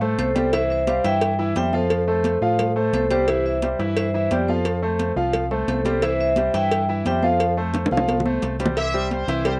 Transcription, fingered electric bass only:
Already playing: A2
0.18 C2
1.04 G2
1.56 F2
2.41 A2
2.93 C2
3.79 G2
4.31 F2
5.16 C2
5.68 C2
6.54 G2
7.05 F2
7.91 C2
8.42 C2
9.27 C2

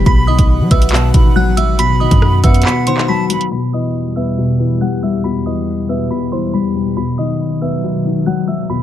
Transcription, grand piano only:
0.06 B2
0.28 D#3
0.71 B3
0.93 B2
1.14 D#3
1.36 F#3
1.57 F#3
1.79 B2
2.01 D#3
2.44 B3
2.66 B2
2.87 D#3
3.09 F#3
3.30 F#3
3.52 B2
3.73 E3
4.17 B3
4.38 B2
4.59 E3
4.81 G3
5.03 G3
5.24 B2
5.46 E3
5.89 B3
6.11 B2
6.32 E3
6.54 G3
6.75 G3
6.97 B2
7.18 D#3
7.62 B3
7.83 B2
8.05 D#3
8.27 F#3
8.48 F#3
8.69 B2

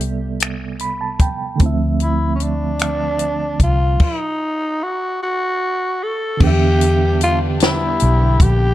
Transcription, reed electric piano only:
Already playing: C3 G3 B3 A4 D5 E5
0.81 B5
1.01 A5
1.21 G5
1.56 D3 A3
1.61 C4 E4
1.66 F3 E5
6.37 D3 B3
6.42 D4 G4
6.47 E5

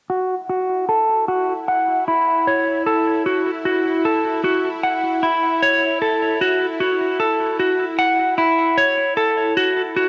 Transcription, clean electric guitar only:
0.10 F#4
0.49 F#4
0.89 A4
1.28 F#4
1.68 F#5
2.08 E4
2.47 C#5
2.86 A4
3.26 F#4
3.65 F#4
4.05 A4
4.44 F#4
4.83 F#5
5.23 E4
5.62 C#5
6.02 A4
6.41 F#4
6.80 F#4
7.20 A4
7.60 F#4
7.99 F#5
8.38 E4
8.78 C#5
9.17 A4
9.57 F#4
9.96 F#4

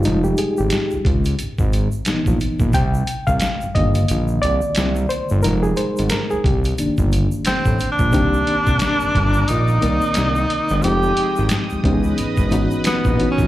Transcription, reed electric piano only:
Already playing: F4
0.04 G3 G#3 D#4
0.24 G4
0.39 G#4
0.58 G4
2.06 E3 B3 D#4
2.74 G5
3.27 F5
3.75 D3 D#3 A#3 D#5
4.42 D5
5.09 C5
5.43 G3 G#3 D#4 A#4
5.63 G#4
5.77 C5
6.11 A#4
6.31 G#4
6.45 G4
6.78 D#3 A#3 D4
8.12 D#3 A#3 C4 D4 G4
9.81 D#3 A#3 C4 A#4 D5
10.82 F3 G#3 C4 D#4 G4
11.83 E3 B3 C#4 D#4 G4
11.93 G#4
12.51 E3 B3 C#4 D#4 F#4
13.18 E3 B3 C#4 D#4 F#4

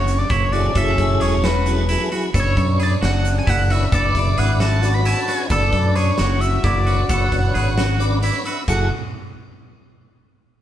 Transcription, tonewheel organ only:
0.52 F#3 E4 G#4 A4
0.76 F#3 E4 G#4 A4
1.67 F#3 E4 G#4 A4
1.89 F#3 E4 G#4 A4
2.00 F#3 E4 G#4 A4
2.12 F#3 E4 G#4 B4
2.35 D4 B4 C#5
3.70 D4 B4 C#5
3.93 D4 B4 D5
4.82 D4 B4 D5
5.06 D4 B4 C#5
5.17 D4 B4 C#5
5.28 D4 B4 C#5
5.51 D4 B4 D5
6.87 D4 B4 C#5
7.09 D4 B4 C#5
7.99 D4 B4 D5
8.22 D4 B4 D5
8.34 D4 B4 C#5
8.45 D4 B4 E5
8.68 F#3 E4 G#4 A4

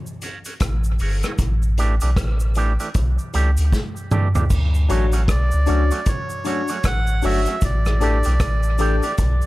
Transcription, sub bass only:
0.61 A1
1.01 G1
1.39 A1
2.03 B1
2.17 A1
2.96 B1
3.35 C#2
3.59 D2
4.51 D2
4.91 A1
5.29 B1
5.54 C#2
5.69 C#2
6.85 A1
7.24 G1
7.63 A1
8.26 B1
8.41 A1
9.19 B1

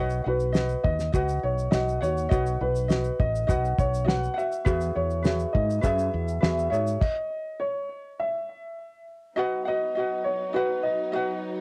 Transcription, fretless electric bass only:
Already playing: B1
0.26 B1
0.85 D#2
1.14 C#2
1.43 B1
1.73 B1
2.02 D#2
2.32 B1
2.61 B1
3.20 A1
3.49 B1
3.79 B1
4.66 E2
4.96 E2
5.55 G#2
5.84 F#2
6.14 E2
6.42 E2
6.71 G#2

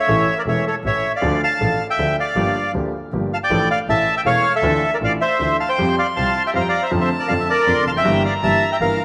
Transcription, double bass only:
0.08 A1
0.46 E1
0.84 A1
1.23 D2
1.60 A1
1.98 D2
2.36 G1
2.74 D2
3.13 G1
3.50 A1
3.88 A1
4.26 E1
4.62 D2
5.01 A1
5.40 D2
5.78 F2
6.17 C2
6.54 F2
6.92 F2
7.29 F2
7.67 F2
7.86 F1
8.05 G1
8.42 G1
8.80 G1

